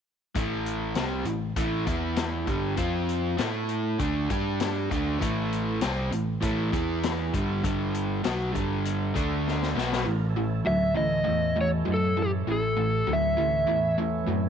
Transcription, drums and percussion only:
0.35 kick, closed hi-hat
0.66 closed hi-hat
0.95 snare, closed hi-hat
1.25 closed hi-hat
1.56 kick, closed hi-hat
1.87 kick, closed hi-hat
2.16 snare, closed hi-hat
2.47 kick, closed hi-hat
2.77 kick, closed hi-hat
3.09 closed hi-hat
3.38 snare, closed hi-hat
3.69 closed hi-hat
3.99 kick, closed hi-hat
4.30 kick, closed hi-hat
4.60 snare, closed hi-hat
4.91 kick, closed hi-hat
5.22 kick, closed hi-hat
5.53 closed hi-hat
5.81 snare, closed hi-hat
6.12 closed hi-hat
6.42 kick, closed hi-hat
6.73 kick, closed hi-hat
7.03 snare, closed hi-hat
7.34 kick, closed hi-hat
7.64 kick, closed hi-hat
7.94 closed hi-hat
8.24 snare, closed hi-hat
8.55 kick, closed hi-hat
8.85 closed hi-hat
9.16 kick, closed hi-hat
9.48 snare
9.63 snare
9.78 snare
9.92 snare

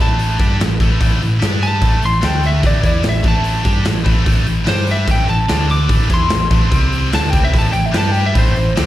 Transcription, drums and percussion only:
0.19 open hi-hat
0.40 kick, open hi-hat
0.60 snare, open hi-hat
0.80 kick, open hi-hat
1.01 kick, open hi-hat
1.22 open hi-hat
1.41 snare, open hi-hat
1.62 open hi-hat
1.81 kick, open hi-hat
2.02 open hi-hat
2.22 snare, open hi-hat
2.43 open hi-hat
2.63 kick, open hi-hat
2.84 kick, open hi-hat
3.03 snare, open hi-hat
3.14 snare
3.24 kick, open hi-hat
3.44 open hi-hat
3.64 kick, open hi-hat
3.85 snare, open hi-hat
4.06 kick, open hi-hat
4.26 kick, open hi-hat
4.46 open hi-hat
4.66 snare, open hi-hat
4.77 snare
4.87 open hi-hat
5.08 kick, open hi-hat
5.28 open hi-hat
5.49 snare, open hi-hat
5.69 open hi-hat
5.89 kick, open hi-hat
6.10 kick, open hi-hat
6.30 snare, open hi-hat
6.51 kick, open hi-hat
6.72 kick, open hi-hat
6.92 open hi-hat
7.12 snare, open hi-hat
7.32 kick, open hi-hat
7.53 kick, open hi-hat
7.73 open hi-hat
7.93 snare, open hi-hat
8.14 open hi-hat
8.35 kick, open hi-hat
8.56 open hi-hat
8.76 snare, open hi-hat

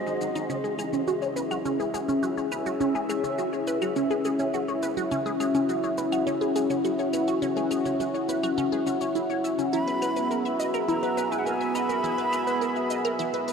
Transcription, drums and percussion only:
0.07 shaker
0.21 shaker
0.36 shaker
0.50 shaker
0.64 shaker
0.79 claves, shaker
0.93 shaker
1.08 shaker
1.22 shaker
1.37 shaker
1.51 claves, shaker
1.65 shaker
1.80 shaker
1.94 shaker
2.09 shaker
2.23 shaker
2.37 shaker
2.52 claves, shaker
2.66 shaker
2.81 shaker
2.95 shaker
3.10 claves, shaker
3.24 shaker
3.38 shaker
3.53 shaker
3.67 shaker
3.82 claves, shaker
3.96 shaker
4.11 shaker
4.25 shaker
4.39 shaker
4.54 shaker
4.68 shaker
4.83 shaker
4.97 shaker
5.12 shaker
5.26 shaker
5.40 claves, shaker
5.55 shaker
5.69 shaker
5.84 shaker
5.98 shaker
6.12 claves, shaker
6.27 shaker
6.42 shaker
6.56 shaker
6.70 shaker
6.85 shaker
6.99 shaker
7.13 claves, shaker
7.28 shaker
7.42 shaker
7.57 shaker
7.71 claves, shaker
7.86 shaker
8.00 shaker
8.15 shaker
8.29 shaker
8.44 claves, shaker
8.58 shaker
8.72 shaker
8.87 shaker
9.01 shaker
9.15 shaker
9.30 shaker
9.44 shaker
9.59 shaker
9.73 shaker
9.88 shaker
10.02 claves, shaker
10.16 shaker
10.31 shaker
10.46 shaker
10.60 shaker
10.74 claves, shaker
10.89 shaker
11.03 shaker
11.18 shaker
11.32 shaker
11.47 shaker
11.61 shaker
11.75 claves, shaker
11.90 shaker
12.04 shaker
12.18 shaker
12.33 claves, shaker
12.47 shaker
12.62 shaker
12.76 shaker
12.90 shaker
13.05 claves, shaker
13.19 shaker
13.34 shaker
13.48 shaker

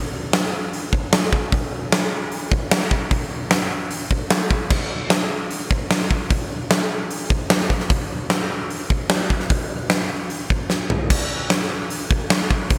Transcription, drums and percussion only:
0.33 snare, open hi-hat
0.73 open hi-hat
0.93 kick
1.13 snare, open hi-hat
1.33 kick
1.52 kick, open hi-hat
1.92 snare, open hi-hat
2.32 open hi-hat
2.52 kick
2.71 snare, open hi-hat
2.81 snare
2.91 kick
3.11 kick, open hi-hat
3.51 snare, open hi-hat
3.91 open hi-hat
4.11 kick
4.31 snare, open hi-hat
4.51 kick
4.70 kick, crash
5.10 snare, open hi-hat
5.51 open hi-hat
5.71 kick
5.91 snare, open hi-hat
6.01 snare
6.11 kick
6.30 kick, open hi-hat
6.71 snare, open hi-hat
7.11 open hi-hat
7.30 kick
7.50 snare, open hi-hat
7.60 snare
7.70 kick
7.80 snare
7.90 kick, open hi-hat
8.30 snare, open hi-hat
8.70 open hi-hat
8.90 kick
9.10 snare, open hi-hat
9.30 kick
9.40 snare
9.50 kick, open hi-hat
9.90 snare, open hi-hat
10.30 open hi-hat
10.50 kick
10.70 snare
10.90 floor tom
11.10 kick, crash
11.50 snare, open hi-hat
11.90 open hi-hat
12.11 kick
12.30 snare, open hi-hat
12.51 kick
12.70 kick, open hi-hat

